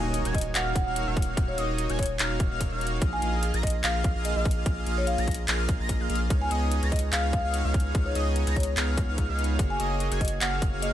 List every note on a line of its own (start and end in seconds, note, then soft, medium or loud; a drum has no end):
0.00 0.23 D#1 medium
0.00 0.22 A#3 medium
0.00 0.22 D#4 medium
0.00 0.22 F#4 medium
0.00 0.23 C#5 medium
0.00 0.22 D#5 medium
0.00 0.22 D#6 medium
0.00 impact medium
0.14 closed hi-hat medium
0.25 0.53 D#1 loud
0.25 0.39 A#3 medium
0.25 0.39 D#4 medium
0.25 0.39 F#4 medium
0.25 0.39 C#5 medium
0.25 0.39 G#5 medium
0.25 0.39 G#6 medium
0.25 closed hi-hat medium
0.34 0.50 D#5 medium
0.34 kick medium
0.34 closed hi-hat soft
0.38 closed hi-hat medium
0.41 closed hi-hat medium
0.55 0.84 D#1 loud
0.55 0.84 A#3 medium
0.55 0.84 D#4 medium
0.55 0.84 F#4 medium
0.55 0.84 C#5 medium
0.55 0.84 F5 medium
0.55 0.70 F#5 medium
0.55 0.84 F6 medium
0.55 clap loud
0.55 closed hi-hat medium
0.75 0.83 F#5 medium
0.75 kick loud
0.75 closed hi-hat medium
0.87 1.05 D#1 loud
0.87 1.05 A#3 medium
0.87 1.05 D#4 medium
0.87 1.05 F#4 medium
0.87 1.05 C#5 medium
0.87 1.05 F5 loud
0.87 0.93 F#5 medium
0.87 1.05 F6 loud
0.96 closed hi-hat medium
1.07 1.35 D#1 loud
1.07 1.35 A#3 medium
1.07 1.35 D#4 medium
1.07 1.35 F#4 medium
1.07 1.35 C#5 medium
1.07 1.35 F5 medium
1.07 1.35 F6 medium
1.17 kick loud
1.17 closed hi-hat medium
1.22 closed hi-hat medium
1.37 1.56 D#1 medium
1.37 1.56 F#4 medium
1.37 1.56 C#5 medium
1.37 1.56 F5 medium
1.37 1.55 F6 medium
1.37 kick loud
1.37 closed hi-hat medium
1.48 1.78 C#5 medium
1.58 1.87 D#1 medium
1.58 1.87 A#3 medium
1.58 1.87 D#4 medium
1.58 1.87 F#4 medium
1.58 1.87 C#5 medium
1.58 1.87 D#5 medium
1.58 1.87 D#6 medium
1.58 closed hi-hat medium
1.78 closed hi-hat medium
1.89 2.17 D#1 loud
1.89 2.04 A#3 medium
1.89 2.04 D#4 medium
1.89 2.04 F#4 medium
1.89 2.04 C#5 medium
1.89 2.04 G#5 medium
1.89 2.04 G#6 medium
1.89 closed hi-hat medium
1.99 2.57 C#5 medium
1.99 kick medium
1.99 closed hi-hat soft
2.03 closed hi-hat medium
2.06 closed hi-hat medium
2.19 2.49 D#1 loud
2.19 2.48 A#3 medium
2.19 2.48 D#4 medium
2.19 2.48 F#4 medium
2.19 2.48 C#5 medium
2.19 2.48 F5 medium
2.19 2.49 F6 medium
2.19 clap loud
2.19 closed hi-hat medium
2.40 kick loud
2.40 closed hi-hat medium
2.51 2.69 D#1 loud
2.51 2.69 A#3 loud
2.51 2.69 D#4 medium
2.51 2.69 F#4 medium
2.51 2.69 C#5 medium
2.51 2.69 F5 loud
2.51 2.69 F6 loud
2.61 kick medium
2.61 closed hi-hat medium
2.72 3.00 D#1 loud
2.72 2.99 A#3 medium
2.72 2.99 D#4 medium
2.72 2.99 F#4 medium
2.72 2.99 C#5 medium
2.72 2.99 F5 medium
2.72 2.99 F6 medium
2.81 closed hi-hat medium
2.87 closed hi-hat medium
3.02 3.20 A#1 loud
3.02 3.20 A#3 medium
3.02 3.20 F4 medium
3.02 3.20 G#4 medium
3.02 3.20 D#5 medium
3.02 3.20 F5 medium
3.02 3.20 F6 medium
3.02 kick loud
3.02 closed hi-hat medium
3.13 3.27 G#5 medium
3.22 3.52 A#1 loud
3.22 3.51 A#3 medium
3.22 3.51 F4 medium
3.22 3.51 G#4 medium
3.22 3.51 D#5 medium
3.22 3.51 F5 medium
3.22 3.51 F6 medium
3.22 closed hi-hat medium
3.43 closed hi-hat medium
3.54 3.82 A#1 loud
3.54 3.68 A#3 medium
3.54 3.68 F4 medium
3.54 3.68 G#4 medium
3.54 3.68 D#5 medium
3.54 3.68 A#5 medium
3.54 3.68 A#6 medium
3.54 closed hi-hat medium
3.63 3.79 D#5 medium
3.63 kick medium
3.63 closed hi-hat soft
3.67 closed hi-hat medium
3.70 closed hi-hat medium
3.84 4.13 A#1 loud
3.84 4.13 A#3 medium
3.84 4.13 F4 medium
3.84 4.13 G#4 medium
3.84 4.13 D#5 medium
3.84 4.13 F5 medium
3.84 3.99 F5 medium
3.84 4.13 F6 medium
3.84 clap loud
3.84 closed hi-hat medium
4.04 kick loud
4.04 closed hi-hat medium
4.16 4.34 A#1 loud
4.16 4.33 A#3 loud
4.16 4.33 F4 medium
4.16 4.33 G#4 medium
4.16 4.33 D#5 medium
4.16 4.33 F5 loud
4.16 4.33 F6 loud
4.25 4.32 D#5 medium
4.25 closed hi-hat medium
4.36 4.64 A#1 loud
4.36 4.64 A#3 medium
4.36 4.64 F4 medium
4.36 4.64 G#4 medium
4.36 4.64 D#5 medium
4.36 4.42 D#5 medium
4.36 4.64 F5 medium
4.36 4.64 F6 medium
4.45 kick loud
4.45 closed hi-hat medium
4.51 closed hi-hat medium
4.66 4.85 A#1 medium
4.66 4.84 A#3 medium
4.66 4.84 F4 medium
4.66 4.84 G#4 medium
4.66 4.84 D#5 medium
4.66 4.84 F5 medium
4.66 4.84 F6 medium
4.66 kick loud
4.66 closed hi-hat medium
4.86 5.16 A#1 loud
4.86 5.16 A#3 medium
4.86 5.16 F4 medium
4.86 5.16 G#4 medium
4.86 5.16 D#5 medium
4.86 5.16 F5 medium
4.86 5.16 F6 medium
4.86 closed hi-hat medium
4.98 5.05 C#5 medium
5.07 5.65 F5 medium
5.07 closed hi-hat medium
5.18 5.46 A#1 loud
5.18 5.32 A#3 medium
5.18 5.33 F4 medium
5.18 5.32 G#4 medium
5.18 5.32 D#5 medium
5.18 5.32 A#5 loud
5.18 5.32 A#6 medium
5.18 closed hi-hat medium
5.28 kick medium
5.28 closed hi-hat soft
5.31 closed hi-hat medium
5.34 closed hi-hat medium
5.48 5.78 A#1 loud
5.48 5.77 A#3 medium
5.48 5.77 F4 medium
5.48 5.77 G#4 medium
5.48 5.77 D#5 medium
5.48 5.77 F5 medium
5.48 5.77 F6 medium
5.48 clap loud
5.48 closed hi-hat medium
5.69 kick loud
5.69 closed hi-hat medium
5.80 5.98 A#1 loud
5.80 5.98 A#3 medium
5.80 5.98 F4 medium
5.80 5.98 G#4 medium
5.80 5.98 D#5 medium
5.80 5.98 A#5 loud
5.80 5.98 A#6 loud
5.89 kick medium
5.89 closed hi-hat medium
6.00 6.08 A#1 loud
6.00 6.08 A#3 medium
6.00 6.08 F4 medium
6.00 6.08 G#4 medium
6.00 6.08 D#5 medium
6.00 6.08 F5 medium
6.00 6.07 F6 medium
6.10 6.32 A#1 loud
6.10 6.20 A#3 medium
6.10 6.20 F4 medium
6.10 6.20 G#4 medium
6.10 6.20 D#5 medium
6.10 6.20 F5 medium
6.10 6.20 F6 medium
6.10 closed hi-hat soft
6.15 closed hi-hat medium
6.30 6.49 C#2 medium
6.30 6.49 B3 medium
6.30 6.49 D#4 medium
6.30 6.49 G#4 medium
6.30 6.49 C#5 medium
6.30 6.49 F5 medium
6.30 6.49 F6 medium
6.30 kick loud
6.30 closed hi-hat medium
6.42 6.56 G#5 medium
6.51 6.80 C#2 loud
6.51 6.80 B3 medium
6.51 6.80 D#4 medium
6.51 6.80 G#4 medium
6.51 6.80 C#5 medium
6.51 6.80 D#5 medium
6.51 6.80 D#6 medium
6.51 closed hi-hat medium
6.71 closed hi-hat medium
6.83 7.11 C#2 loud
6.83 6.97 B3 medium
6.83 6.97 D#4 medium
6.83 6.97 G#4 medium
6.83 6.97 C#5 medium
6.83 6.97 A#5 medium
6.83 6.97 A#6 medium
6.83 closed hi-hat medium
6.92 7.07 D#5 medium
6.92 kick medium
6.92 closed hi-hat soft
6.96 closed hi-hat medium
6.99 closed hi-hat medium
7.13 7.42 C#2 loud
7.13 7.42 B3 medium
7.13 7.42 D#4 medium
7.13 7.42 G#4 medium
7.13 7.42 C#5 medium
7.13 7.28 F5 loud
7.13 7.42 F5 medium
7.13 7.42 F6 medium
7.13 clap loud
7.13 closed hi-hat medium
7.33 7.40 F5 medium
7.33 kick loud
7.33 closed hi-hat medium
7.44 7.63 C#2 loud
7.44 7.62 B3 medium
7.44 7.62 D#4 medium
7.44 7.62 G#4 medium
7.44 7.62 C#5 medium
7.44 7.62 F5 loud
7.44 7.50 F5 medium
7.44 7.62 F6 loud
7.54 closed hi-hat medium
7.65 7.93 C#2 loud
7.65 7.92 B3 medium
7.65 7.92 D#4 medium
7.65 7.92 G#4 medium
7.65 7.92 C#5 medium
7.65 7.92 F5 medium
7.65 7.92 F6 medium
7.74 kick loud
7.74 closed hi-hat soft
7.80 closed hi-hat medium
7.95 8.13 C#2 medium
7.95 8.13 B3 medium
7.95 8.13 D#4 medium
7.95 8.13 G#4 medium
7.95 8.13 C#5 medium
7.95 8.13 F6 medium
7.95 kick loud
7.95 closed hi-hat medium
8.06 8.36 C#5 medium
8.15 8.45 C#2 loud
8.15 8.44 B3 medium
8.15 8.44 D#4 medium
8.15 8.44 G#4 medium
8.15 8.44 C#5 medium
8.15 8.44 D#5 medium
8.15 8.44 D#6 medium
8.15 closed hi-hat medium
8.36 closed hi-hat medium
8.47 8.75 C#2 loud
8.47 8.61 B3 medium
8.47 8.61 D#4 medium
8.47 8.61 G#4 medium
8.47 8.61 C#5 medium
8.47 8.61 A#5 medium
8.47 8.61 A#6 medium
8.47 closed hi-hat medium
8.56 9.14 C#5 medium
8.56 kick medium
8.56 closed hi-hat soft
8.60 closed hi-hat medium
8.63 closed hi-hat medium
8.77 9.06 C#2 medium
8.77 9.06 B3 medium
8.77 9.06 D#4 medium
8.77 9.06 G#4 medium
8.77 9.06 C#5 medium
8.77 9.06 F5 medium
8.77 9.06 F6 medium
8.77 clap loud
8.77 closed hi-hat medium
8.97 kick loud
8.97 closed hi-hat medium
9.09 9.27 C#2 loud
9.09 9.27 B3 medium
9.09 9.27 D#4 medium
9.09 9.27 G#4 medium
9.09 9.27 C#5 medium
9.09 9.27 F5 loud
9.09 9.27 F6 loud
9.18 kick medium
9.18 closed hi-hat medium
9.29 9.61 C#2 loud
9.29 9.57 B3 medium
9.29 9.57 D#4 medium
9.29 9.57 G#4 medium
9.29 9.57 C#5 medium
9.29 9.57 F5 medium
9.29 9.57 F6 medium
9.39 closed hi-hat medium
9.44 closed hi-hat medium
9.59 9.78 F#1 loud
9.59 9.77 A#3 medium
9.59 9.77 F#4 medium
9.59 9.77 G#4 medium
9.59 9.77 C#5 medium
9.59 9.77 F5 medium
9.59 9.77 F6 medium
9.59 kick loud
9.59 closed hi-hat medium
9.70 9.85 G#5 medium
9.80 10.09 F#1 loud
9.80 10.09 A#3 medium
9.80 10.09 F#4 medium
9.80 10.09 G#4 medium
9.80 10.09 C#5 medium
9.80 10.09 D#5 medium
9.80 10.09 D#6 medium
9.80 closed hi-hat medium
10.00 closed hi-hat medium
10.11 10.39 F#1 loud
10.11 10.26 A#3 medium
10.11 10.26 F#4 medium
10.11 10.26 G#4 medium
10.11 10.26 C#5 medium
10.11 10.26 G#5 medium
10.11 10.26 G#6 medium
10.11 closed hi-hat medium
10.21 10.36 D#5 medium
10.21 kick medium
10.21 closed hi-hat soft
10.25 closed hi-hat medium
10.28 closed hi-hat medium
10.41 10.71 F#1 loud
10.41 10.70 A#3 medium
10.41 10.70 F#4 medium
10.41 10.70 G#4 medium
10.41 10.70 C#5 medium
10.41 10.70 F5 medium
10.41 10.57 F#5 medium
10.41 10.70 F6 medium
10.41 clap loud
10.41 closed hi-hat medium
10.62 kick loud
10.62 closed hi-hat medium
10.73 10.91 F#1 loud
10.73 10.91 A#3 loud
10.73 10.91 F#4 medium
10.73 10.91 G#4 medium
10.73 10.91 C#5 medium
10.73 10.91 F5 loud
10.73 10.91 F6 loud
10.82 10.90 D#5 medium
10.82 closed hi-hat medium